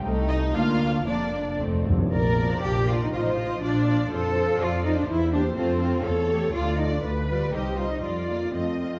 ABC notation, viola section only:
X:1
M:2/4
L:1/8
Q:1/4=121
K:Bb
V:1 name="Viola section"
[A,E]2 [B,D]2 | [B,D]2 [A,C] z | z [F,D]2 [F,D] | [F,F] [F,F] [F,F] [F,F] |
[F,F] [F,F]2 [F,F] | z [B,G] [A,F] [A,F] | z [A,G] [A,F] [A,F] | z [G,F] [G,E] [G,E] |
z [B,F] [A,F] [A,F] |]